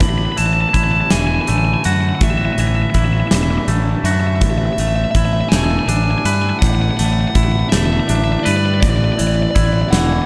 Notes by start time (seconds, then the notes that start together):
Already playing: D3 A3 D4 E4
0.00 A1 A2 F#3 B5, kick, closed hi-hat
0.09 B5
0.18 B5
0.25 B5
0.32 B5
0.37 A1 E3 A5, closed hi-hat
0.46 A5
0.53 A5
0.61 A5
0.69 A5
0.73 A1 E4 A5, kick, closed hi-hat
0.84 A5
0.92 A5
1.01 A5
1.10 E1 E3 G#5, snare, closed hi-hat
1.19 G#5
1.27 G#5
1.35 G#5
1.41 G#5
1.47 A1 A3 G#5, closed hi-hat
1.58 G#5
1.65 G#5
1.74 G#5
1.84 F#2 F#4 F#5, closed hi-hat
1.93 F#5
2.01 F#5
2.09 F#5
2.15 F#5
2.21 A1 A2 D4 E5, kick, closed hi-hat
2.30 E5
2.38 E5
2.45 E5
2.53 E5
2.58 A1 E3 E5, closed hi-hat
2.67 E5
2.76 E5
2.82 E5
2.90 E5
2.94 A1 E4, kick, closed hi-hat
2.99 E5
3.05 E5
3.13 E5
3.20 E5
3.28 E3 E5, snare, closed hi-hat
3.32 E1 E5
3.43 E5
3.51 E5
3.58 E5
3.68 A1 A3, closed hi-hat
4.03 F#2 F#4 E5, closed hi-hat
4.11 E5
4.20 E5
4.27 E5
4.36 E5
4.41 A1 A2 D3 A3 E4 E5, kick, closed hi-hat
4.50 E5
4.58 E5
4.66 E5
4.73 E5
4.78 A1 A3 E5, closed hi-hat
4.88 E5
4.96 E5
5.04 E5
5.11 A1 E5, kick, closed hi-hat
5.16 E4 E5
5.25 E5
5.33 E5
5.41 E5
5.49 E1 E5 G#5, snare, closed hi-hat
5.53 A3 G#5
5.64 G#5
5.71 G#5
5.79 G#5
5.88 A1 D4 G#5, closed hi-hat
5.96 G#5
6.04 G#5
6.11 G#5
6.18 G#5
6.25 G2 B4 G#5, closed hi-hat
6.33 G#5
6.42 G#5
6.50 G#5
6.59 A1 A2 F#5, kick, closed hi-hat
6.67 F#5
6.75 F#5
6.82 F#5
6.91 F#5
6.97 A1 A3 F#5, closed hi-hat
7.05 F#5
7.13 F#5
7.21 F#5
7.28 F#5
7.35 A1 E4 F#5, kick, closed hi-hat
7.43 F#5
7.52 F#5
7.59 F#5
7.69 E1 A3 E5, snare, closed hi-hat
7.78 E5
7.86 E5
7.93 E5
8.00 E5
8.08 A1 D4 E5, closed hi-hat
8.16 E5
8.24 E5
8.32 E5
8.40 D5 E5
8.45 G2 B4, closed hi-hat
8.51 D5
8.57 D5
8.66 D5
8.74 D5
8.81 A1 A2 F#3 D5, kick, closed hi-hat
8.89 D5
8.96 D5
9.04 D5
9.12 D5
9.18 A1 E3 D5, closed hi-hat
9.27 D5
9.35 D5
9.42 D5
9.51 D5
9.55 A1 E4 D5, kick, closed hi-hat
9.66 D5
9.73 D5
9.82 D5
9.89 E1 E3 D5 F#5
9.93 snare, closed hi-hat
9.98 F#5
10.07 F#5
10.13 F#5
10.22 F#5